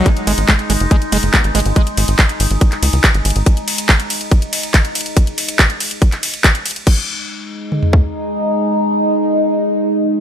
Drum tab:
CC |--------------------------------|--------------------------------|--------------------------------|--------------------------------|
RD |----x-------x-------x-------x---|----x-------x-------x-------x---|----x-------x-------x-------x---|----x-------x-------x-------x---|
HH |x-x-o-x-x-x-o-x-x-x-o-x-x-x-oxx-|x-x-o-x-x-x-o-x-x-x-o-x-x-x-oxx-|x-x-o-x-x-x-o-x-x-x-o-x-x-x-oxx-|x-x-o-x-x-x-o-x-x-x-o-x-x-x-oxx-|
CP |--------x---------------x-------|--------x---------x-----x-------|--------x---------------x-------|--------x---------x-----x-------|
T2 |--------------------------------|--------------------------------|--------------------------------|--------------------------------|
FT |--------------------------------|--------------------------------|--------------------------------|--------------------------------|
BD |o-------o-------o-------o-------|o-------o-------o-------o-------|o-------o-------o-------o-------|o-------o-------o-------o-------|

CC |x-------------------------------|--------------------------------|
RD |--------------------------------|--------------------------------|
HH |--------------------------------|--------------------------------|
CP |--------------------------------|--------------------------------|
T2 |----------------o---------------|--------------------------------|
FT |------------------o-------------|--------------------------------|
BD |o-------------------o-----------|--------------------------------|